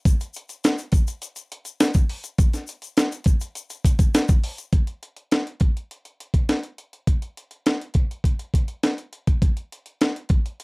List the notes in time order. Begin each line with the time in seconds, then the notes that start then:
0.05 kick, closed hi-hat, shaker
0.21 closed hi-hat, shaker
0.34 closed hi-hat, shaker
0.49 closed hi-hat, shaker
0.64 snare, closed hi-hat, shaker
0.78 closed hi-hat, shaker
0.92 kick, closed hi-hat, shaker
1.07 closed hi-hat, shaker
1.22 closed hi-hat, shaker
1.36 closed hi-hat, shaker
1.52 closed hi-hat
1.65 closed hi-hat, shaker
1.80 snare, closed hi-hat, shaker
1.94 kick, closed hi-hat, shaker
2.09 open hi-hat
2.24 closed hi-hat, shaker
2.38 kick, closed hi-hat, shaker
2.53 snare, closed hi-hat, shaker
2.67 closed hi-hat, shaker
2.82 closed hi-hat, shaker
2.97 snare, closed hi-hat, shaker
3.12 closed hi-hat, shaker
3.24 kick, closed hi-hat, shaker
3.41 closed hi-hat, shaker
3.55 closed hi-hat, shaker
3.70 closed hi-hat, shaker
3.85 kick, closed hi-hat, shaker
3.99 kick, closed hi-hat, shaker
4.14 snare, closed hi-hat, shaker
4.28 kick, closed hi-hat, shaker
4.44 open hi-hat
4.58 closed hi-hat, shaker
4.73 kick, closed hi-hat
4.87 closed hi-hat
5.03 closed hi-hat
5.16 closed hi-hat
5.32 snare, closed hi-hat
5.47 closed hi-hat
5.60 kick, closed hi-hat
5.77 closed hi-hat
5.91 closed hi-hat
6.05 closed hi-hat
6.20 closed hi-hat
6.34 kick, closed hi-hat
6.49 snare, closed hi-hat
6.63 closed hi-hat
6.78 closed hi-hat
6.93 closed hi-hat
7.07 kick, closed hi-hat
7.22 closed hi-hat
7.37 closed hi-hat
7.51 closed hi-hat
7.66 snare, closed hi-hat
7.81 closed hi-hat
7.94 kick, closed hi-hat
8.11 closed hi-hat
8.24 kick, closed hi-hat
8.39 closed hi-hat
8.54 kick, closed hi-hat
8.68 closed hi-hat
8.83 snare, closed hi-hat
8.98 closed hi-hat
9.13 closed hi-hat
9.27 kick, closed hi-hat
9.42 kick, closed hi-hat
9.57 closed hi-hat
9.72 closed hi-hat
9.86 closed hi-hat
10.01 snare, closed hi-hat
10.16 closed hi-hat
10.29 kick, closed hi-hat
10.46 closed hi-hat
10.60 closed hi-hat